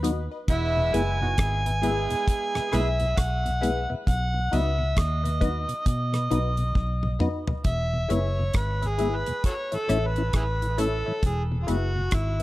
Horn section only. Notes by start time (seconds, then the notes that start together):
0.49 E3 G#3 B3 E4
1.20 F#3 B3 D#4 F#4
1.38 G#3 B3 E4 G#4
1.82 G#3 B3 E4 G#4
2.71 G#3 B3 E4 G#4